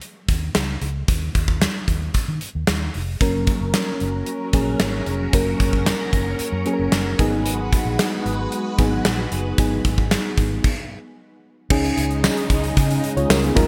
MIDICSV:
0, 0, Header, 1, 6, 480
1, 0, Start_track
1, 0, Tempo, 530973
1, 981, Time_signature, 4, 2, 24, 8
1, 12362, End_track
2, 0, Start_track
2, 0, Title_t, "String machine"
2, 0, Program_c, 0, 50
2, 2905, Note_on_c, 0, 54, 80
2, 2905, Note_on_c, 0, 61, 73
2, 2905, Note_on_c, 0, 70, 86
2, 6467, Note_off_c, 0, 54, 0
2, 6467, Note_off_c, 0, 61, 0
2, 6467, Note_off_c, 0, 70, 0
2, 6503, Note_on_c, 0, 56, 82
2, 6504, Note_on_c, 0, 71, 90
2, 6506, Note_on_c, 0, 66, 74
2, 9591, Note_off_c, 0, 56, 0
2, 9591, Note_off_c, 0, 71, 0
2, 9592, Note_off_c, 0, 66, 0
2, 10588, Note_on_c, 0, 56, 79
2, 10588, Note_on_c, 0, 63, 95
2, 10592, Note_on_c, 0, 49, 79
2, 12248, Note_off_c, 0, 56, 0
2, 12248, Note_off_c, 0, 63, 0
2, 12250, Note_off_c, 0, 49, 0
2, 12269, Note_on_c, 0, 65, 96
2, 12270, Note_on_c, 0, 63, 76
2, 12271, Note_on_c, 0, 54, 84
2, 12362, Note_off_c, 0, 54, 0
2, 12362, Note_off_c, 0, 63, 0
2, 12362, Note_off_c, 0, 65, 0
2, 12362, End_track
3, 0, Start_track
3, 0, Title_t, "FM electric piano"
3, 0, Program_c, 1, 5
3, 2899, Note_on_c, 1, 54, 81
3, 2900, Note_on_c, 1, 58, 70
3, 2903, Note_on_c, 1, 61, 75
3, 2908, Note_on_c, 1, 70, 87
3, 3050, Control_c, 1, 64, 127
3, 3610, Note_off_c, 1, 54, 0
3, 3610, Note_off_c, 1, 58, 0
3, 3612, Note_off_c, 1, 61, 0
3, 3614, Note_off_c, 1, 70, 0
3, 4097, Note_on_c, 1, 54, 74
3, 4101, Note_on_c, 1, 58, 70
3, 4105, Note_on_c, 1, 61, 74
3, 4107, Note_on_c, 1, 68, 86
3, 4631, Note_off_c, 1, 54, 0
3, 4633, Note_off_c, 1, 58, 0
3, 4636, Note_off_c, 1, 61, 0
3, 4636, Note_off_c, 1, 68, 0
3, 4821, Note_on_c, 1, 54, 80
3, 4826, Note_on_c, 1, 58, 76
3, 4828, Note_on_c, 1, 61, 77
3, 4832, Note_on_c, 1, 70, 90
3, 5531, Note_off_c, 1, 54, 0
3, 5533, Note_off_c, 1, 58, 0
3, 5534, Note_off_c, 1, 61, 0
3, 5536, Note_off_c, 1, 70, 0
3, 6018, Note_on_c, 1, 54, 83
3, 6021, Note_on_c, 1, 58, 70
3, 6025, Note_on_c, 1, 61, 76
3, 6030, Note_on_c, 1, 68, 73
3, 6083, Note_off_c, 1, 68, 0
3, 6089, Note_on_c, 1, 70, 83
3, 6491, Note_off_c, 1, 54, 0
3, 6501, Note_off_c, 1, 58, 0
3, 6501, Note_on_c, 1, 54, 85
3, 6501, Note_on_c, 1, 59, 76
3, 6503, Note_off_c, 1, 61, 0
3, 6507, Note_on_c, 1, 63, 80
3, 6511, Note_on_c, 1, 68, 98
3, 6514, Control_c, 1, 64, 0
3, 6535, Note_off_c, 1, 70, 0
3, 6667, Control_c, 1, 64, 127
3, 7269, Note_off_c, 1, 54, 0
3, 7269, Note_off_c, 1, 59, 0
3, 7272, Note_off_c, 1, 63, 0
3, 7274, Note_off_c, 1, 68, 0
3, 7939, Note_on_c, 1, 54, 83
3, 7945, Note_on_c, 1, 59, 72
3, 7949, Note_on_c, 1, 63, 72
3, 7950, Note_on_c, 1, 68, 83
3, 8472, Note_off_c, 1, 54, 0
3, 8475, Note_off_c, 1, 59, 0
3, 8478, Note_off_c, 1, 63, 0
3, 8478, Note_off_c, 1, 68, 0
3, 8660, Note_on_c, 1, 54, 82
3, 8665, Note_on_c, 1, 59, 74
3, 8670, Note_on_c, 1, 63, 73
3, 8673, Note_on_c, 1, 68, 91
3, 9370, Note_off_c, 1, 54, 0
3, 9373, Note_off_c, 1, 59, 0
3, 9375, Note_off_c, 1, 63, 0
3, 9377, Note_off_c, 1, 68, 0
3, 9634, Control_c, 1, 64, 0
3, 10583, Note_on_c, 1, 61, 92
3, 10588, Note_on_c, 1, 63, 76
3, 10591, Note_on_c, 1, 68, 101
3, 10753, Control_c, 1, 64, 127
3, 11292, Note_off_c, 1, 61, 0
3, 11294, Note_off_c, 1, 63, 0
3, 11296, Note_off_c, 1, 68, 0
3, 11904, Note_on_c, 1, 73, 67
3, 11911, Note_on_c, 1, 65, 57
3, 12016, Note_off_c, 1, 73, 0
3, 12020, Note_off_c, 1, 65, 0
3, 12023, Note_on_c, 1, 70, 72
3, 12029, Note_on_c, 1, 61, 62
3, 12136, Note_off_c, 1, 70, 0
3, 12140, Note_off_c, 1, 61, 0
3, 12149, Note_on_c, 1, 68, 65
3, 12151, Note_on_c, 1, 59, 56
3, 12250, Note_on_c, 1, 54, 90
3, 12252, Note_on_c, 1, 58, 81
3, 12257, Note_on_c, 1, 63, 82
3, 12259, Note_on_c, 1, 65, 80
3, 12260, Note_on_c, 1, 70, 104
3, 12273, Control_c, 1, 64, 0
3, 12362, Note_off_c, 1, 54, 0
3, 12362, Note_off_c, 1, 58, 0
3, 12362, Note_off_c, 1, 59, 0
3, 12362, Note_off_c, 1, 63, 0
3, 12362, Note_off_c, 1, 65, 0
3, 12362, Note_off_c, 1, 68, 0
3, 12362, Note_off_c, 1, 70, 0
3, 12362, End_track
4, 0, Start_track
4, 0, Title_t, "Fingered electric bass"
4, 0, Program_c, 2, 33
4, 257, Note_on_c, 2, 39, 74
4, 439, Note_off_c, 2, 39, 0
4, 498, Note_on_c, 2, 37, 77
4, 679, Note_off_c, 2, 37, 0
4, 736, Note_on_c, 2, 37, 93
4, 918, Note_off_c, 2, 37, 0
4, 979, Note_on_c, 2, 39, 102
4, 1160, Note_off_c, 2, 39, 0
4, 1220, Note_on_c, 2, 39, 99
4, 1490, Note_off_c, 2, 39, 0
4, 1698, Note_on_c, 2, 39, 80
4, 1879, Note_off_c, 2, 39, 0
4, 2063, Note_on_c, 2, 51, 85
4, 2152, Note_off_c, 2, 51, 0
4, 2306, Note_on_c, 2, 39, 81
4, 2394, Note_off_c, 2, 39, 0
4, 2424, Note_on_c, 2, 39, 86
4, 2603, Note_off_c, 2, 39, 0
4, 2667, Note_on_c, 2, 29, 85
4, 2845, Note_off_c, 2, 29, 0
4, 2898, Note_on_c, 2, 30, 92
4, 3169, Note_off_c, 2, 30, 0
4, 3263, Note_on_c, 2, 30, 84
4, 3352, Note_off_c, 2, 30, 0
4, 3626, Note_on_c, 2, 30, 87
4, 3804, Note_off_c, 2, 30, 0
4, 4099, Note_on_c, 2, 34, 82
4, 4280, Note_off_c, 2, 34, 0
4, 4344, Note_on_c, 2, 32, 89
4, 4523, Note_off_c, 2, 32, 0
4, 4579, Note_on_c, 2, 29, 83
4, 4760, Note_off_c, 2, 29, 0
4, 4823, Note_on_c, 2, 30, 101
4, 5002, Note_off_c, 2, 30, 0
4, 5061, Note_on_c, 2, 30, 96
4, 5331, Note_off_c, 2, 30, 0
4, 5541, Note_on_c, 2, 30, 85
4, 5721, Note_off_c, 2, 30, 0
4, 5897, Note_on_c, 2, 42, 100
4, 5989, Note_off_c, 2, 42, 0
4, 6139, Note_on_c, 2, 30, 80
4, 6230, Note_off_c, 2, 30, 0
4, 6261, Note_on_c, 2, 30, 91
4, 6441, Note_off_c, 2, 30, 0
4, 6499, Note_on_c, 2, 32, 88
4, 6950, Note_off_c, 2, 32, 0
4, 7099, Note_on_c, 2, 34, 90
4, 7190, Note_off_c, 2, 34, 0
4, 7462, Note_on_c, 2, 32, 83
4, 7641, Note_off_c, 2, 32, 0
4, 7941, Note_on_c, 2, 32, 88
4, 8121, Note_off_c, 2, 32, 0
4, 8182, Note_on_c, 2, 34, 87
4, 8362, Note_off_c, 2, 34, 0
4, 8424, Note_on_c, 2, 30, 85
4, 8603, Note_off_c, 2, 30, 0
4, 8663, Note_on_c, 2, 32, 106
4, 8842, Note_off_c, 2, 32, 0
4, 8901, Note_on_c, 2, 32, 102
4, 9171, Note_off_c, 2, 32, 0
4, 9381, Note_on_c, 2, 32, 80
4, 9561, Note_off_c, 2, 32, 0
4, 10580, Note_on_c, 2, 37, 102
4, 10761, Note_off_c, 2, 37, 0
4, 10821, Note_on_c, 2, 37, 106
4, 11091, Note_off_c, 2, 37, 0
4, 11298, Note_on_c, 2, 37, 83
4, 11480, Note_off_c, 2, 37, 0
4, 11544, Note_on_c, 2, 49, 103
4, 11723, Note_off_c, 2, 49, 0
4, 11902, Note_on_c, 2, 37, 90
4, 11991, Note_off_c, 2, 37, 0
4, 12019, Note_on_c, 2, 37, 96
4, 12200, Note_off_c, 2, 37, 0
4, 12263, Note_on_c, 2, 39, 110
4, 12362, Note_off_c, 2, 39, 0
4, 12362, End_track
5, 0, Start_track
5, 0, Title_t, "Muted fingered electric bass strokes"
5, 1939, Note_on_c, 9, 29, 47
5, 2029, Note_off_c, 9, 29, 0
5, 5783, Note_on_c, 9, 29, 46
5, 5873, Note_off_c, 9, 29, 0
5, 12362, End_track
6, 0, Start_track
6, 0, Title_t, "Drums"
6, 14, Note_on_c, 9, 42, 81
6, 104, Note_off_c, 9, 42, 0
6, 257, Note_on_c, 9, 42, 77
6, 258, Note_on_c, 9, 36, 91
6, 348, Note_off_c, 9, 36, 0
6, 348, Note_off_c, 9, 42, 0
6, 495, Note_on_c, 9, 38, 110
6, 495, Note_on_c, 9, 42, 68
6, 586, Note_off_c, 9, 38, 0
6, 586, Note_off_c, 9, 42, 0
6, 737, Note_on_c, 9, 42, 72
6, 828, Note_off_c, 9, 42, 0
6, 978, Note_on_c, 9, 42, 90
6, 979, Note_on_c, 9, 36, 108
6, 1069, Note_off_c, 9, 42, 0
6, 1070, Note_off_c, 9, 36, 0
6, 1221, Note_on_c, 9, 36, 88
6, 1221, Note_on_c, 9, 42, 76
6, 1311, Note_off_c, 9, 36, 0
6, 1311, Note_off_c, 9, 42, 0
6, 1338, Note_on_c, 9, 36, 86
6, 1428, Note_off_c, 9, 36, 0
6, 1460, Note_on_c, 9, 38, 106
6, 1460, Note_on_c, 9, 42, 83
6, 1550, Note_off_c, 9, 42, 0
6, 1551, Note_off_c, 9, 38, 0
6, 1698, Note_on_c, 9, 36, 76
6, 1705, Note_on_c, 9, 42, 63
6, 1789, Note_off_c, 9, 36, 0
6, 1795, Note_off_c, 9, 42, 0
6, 1936, Note_on_c, 9, 42, 82
6, 1940, Note_on_c, 9, 36, 82
6, 2027, Note_off_c, 9, 42, 0
6, 2030, Note_off_c, 9, 36, 0
6, 2179, Note_on_c, 9, 42, 74
6, 2269, Note_off_c, 9, 42, 0
6, 2416, Note_on_c, 9, 42, 70
6, 2417, Note_on_c, 9, 38, 106
6, 2507, Note_off_c, 9, 38, 0
6, 2507, Note_off_c, 9, 42, 0
6, 2658, Note_on_c, 9, 46, 77
6, 2749, Note_off_c, 9, 46, 0
6, 2900, Note_on_c, 9, 36, 113
6, 2901, Note_on_c, 9, 42, 90
6, 2990, Note_off_c, 9, 36, 0
6, 2991, Note_off_c, 9, 42, 0
6, 3136, Note_on_c, 9, 42, 73
6, 3140, Note_on_c, 9, 36, 93
6, 3227, Note_off_c, 9, 42, 0
6, 3230, Note_off_c, 9, 36, 0
6, 3378, Note_on_c, 9, 42, 89
6, 3379, Note_on_c, 9, 38, 105
6, 3469, Note_off_c, 9, 38, 0
6, 3469, Note_off_c, 9, 42, 0
6, 3619, Note_on_c, 9, 42, 63
6, 3709, Note_off_c, 9, 42, 0
6, 3855, Note_on_c, 9, 42, 84
6, 3945, Note_off_c, 9, 42, 0
6, 4096, Note_on_c, 9, 42, 78
6, 4099, Note_on_c, 9, 36, 99
6, 4187, Note_off_c, 9, 42, 0
6, 4189, Note_off_c, 9, 36, 0
6, 4336, Note_on_c, 9, 38, 111
6, 4336, Note_on_c, 9, 42, 73
6, 4426, Note_off_c, 9, 42, 0
6, 4427, Note_off_c, 9, 38, 0
6, 4578, Note_on_c, 9, 42, 72
6, 4669, Note_off_c, 9, 42, 0
6, 4821, Note_on_c, 9, 36, 111
6, 4822, Note_on_c, 9, 42, 94
6, 4912, Note_off_c, 9, 36, 0
6, 4912, Note_off_c, 9, 42, 0
6, 5062, Note_on_c, 9, 36, 95
6, 5063, Note_on_c, 9, 42, 74
6, 5153, Note_off_c, 9, 36, 0
6, 5154, Note_off_c, 9, 42, 0
6, 5180, Note_on_c, 9, 36, 81
6, 5270, Note_off_c, 9, 36, 0
6, 5301, Note_on_c, 9, 38, 106
6, 5301, Note_on_c, 9, 42, 91
6, 5391, Note_off_c, 9, 42, 0
6, 5392, Note_off_c, 9, 38, 0
6, 5541, Note_on_c, 9, 36, 80
6, 5544, Note_on_c, 9, 42, 56
6, 5631, Note_off_c, 9, 36, 0
6, 5635, Note_off_c, 9, 42, 0
6, 5776, Note_on_c, 9, 42, 86
6, 5867, Note_off_c, 9, 42, 0
6, 6018, Note_on_c, 9, 42, 76
6, 6108, Note_off_c, 9, 42, 0
6, 6256, Note_on_c, 9, 38, 103
6, 6256, Note_on_c, 9, 42, 76
6, 6347, Note_off_c, 9, 38, 0
6, 6347, Note_off_c, 9, 42, 0
6, 6501, Note_on_c, 9, 36, 95
6, 6501, Note_on_c, 9, 42, 73
6, 6591, Note_off_c, 9, 42, 0
6, 6592, Note_off_c, 9, 36, 0
6, 6740, Note_on_c, 9, 42, 93
6, 6831, Note_off_c, 9, 42, 0
6, 6984, Note_on_c, 9, 36, 92
6, 6985, Note_on_c, 9, 42, 70
6, 7074, Note_off_c, 9, 36, 0
6, 7075, Note_off_c, 9, 42, 0
6, 7224, Note_on_c, 9, 42, 90
6, 7225, Note_on_c, 9, 38, 109
6, 7314, Note_off_c, 9, 42, 0
6, 7315, Note_off_c, 9, 38, 0
6, 7468, Note_on_c, 9, 42, 60
6, 7558, Note_off_c, 9, 42, 0
6, 7702, Note_on_c, 9, 42, 86
6, 7793, Note_off_c, 9, 42, 0
6, 7941, Note_on_c, 9, 42, 72
6, 7942, Note_on_c, 9, 36, 95
6, 8032, Note_off_c, 9, 42, 0
6, 8033, Note_off_c, 9, 36, 0
6, 8181, Note_on_c, 9, 38, 107
6, 8181, Note_on_c, 9, 42, 71
6, 8271, Note_off_c, 9, 38, 0
6, 8271, Note_off_c, 9, 42, 0
6, 8424, Note_on_c, 9, 42, 77
6, 8514, Note_off_c, 9, 42, 0
6, 8662, Note_on_c, 9, 36, 115
6, 8663, Note_on_c, 9, 42, 93
6, 8753, Note_off_c, 9, 36, 0
6, 8753, Note_off_c, 9, 42, 0
6, 8903, Note_on_c, 9, 36, 92
6, 8904, Note_on_c, 9, 42, 71
6, 8993, Note_off_c, 9, 36, 0
6, 8994, Note_off_c, 9, 42, 0
6, 9021, Note_on_c, 9, 36, 86
6, 9112, Note_off_c, 9, 36, 0
6, 9141, Note_on_c, 9, 42, 86
6, 9142, Note_on_c, 9, 38, 105
6, 9232, Note_off_c, 9, 38, 0
6, 9232, Note_off_c, 9, 42, 0
6, 9379, Note_on_c, 9, 36, 82
6, 9379, Note_on_c, 9, 42, 60
6, 9469, Note_off_c, 9, 42, 0
6, 9470, Note_off_c, 9, 36, 0
6, 9621, Note_on_c, 9, 36, 98
6, 9621, Note_on_c, 9, 49, 82
6, 9712, Note_off_c, 9, 36, 0
6, 9712, Note_off_c, 9, 49, 0
6, 10578, Note_on_c, 9, 49, 106
6, 10581, Note_on_c, 9, 36, 122
6, 10668, Note_off_c, 9, 49, 0
6, 10671, Note_off_c, 9, 36, 0
6, 10706, Note_on_c, 9, 42, 44
6, 10797, Note_off_c, 9, 42, 0
6, 10825, Note_on_c, 9, 42, 83
6, 10916, Note_off_c, 9, 42, 0
6, 10945, Note_on_c, 9, 42, 46
6, 11035, Note_off_c, 9, 42, 0
6, 11065, Note_on_c, 9, 38, 114
6, 11066, Note_on_c, 9, 54, 81
6, 11155, Note_off_c, 9, 38, 0
6, 11157, Note_off_c, 9, 54, 0
6, 11186, Note_on_c, 9, 42, 51
6, 11276, Note_off_c, 9, 42, 0
6, 11300, Note_on_c, 9, 36, 91
6, 11303, Note_on_c, 9, 42, 64
6, 11390, Note_off_c, 9, 36, 0
6, 11393, Note_off_c, 9, 42, 0
6, 11424, Note_on_c, 9, 42, 55
6, 11515, Note_off_c, 9, 42, 0
6, 11544, Note_on_c, 9, 36, 94
6, 11545, Note_on_c, 9, 42, 92
6, 11634, Note_off_c, 9, 36, 0
6, 11635, Note_off_c, 9, 42, 0
6, 11667, Note_on_c, 9, 42, 59
6, 11758, Note_off_c, 9, 42, 0
6, 11786, Note_on_c, 9, 42, 80
6, 11876, Note_off_c, 9, 42, 0
6, 11908, Note_on_c, 9, 42, 57
6, 11998, Note_off_c, 9, 42, 0
6, 12024, Note_on_c, 9, 38, 115
6, 12028, Note_on_c, 9, 54, 75
6, 12115, Note_off_c, 9, 38, 0
6, 12118, Note_off_c, 9, 54, 0
6, 12148, Note_on_c, 9, 42, 52
6, 12239, Note_off_c, 9, 42, 0
6, 12264, Note_on_c, 9, 36, 101
6, 12267, Note_on_c, 9, 42, 81
6, 12354, Note_off_c, 9, 36, 0
6, 12357, Note_off_c, 9, 42, 0
6, 12362, End_track
0, 0, End_of_file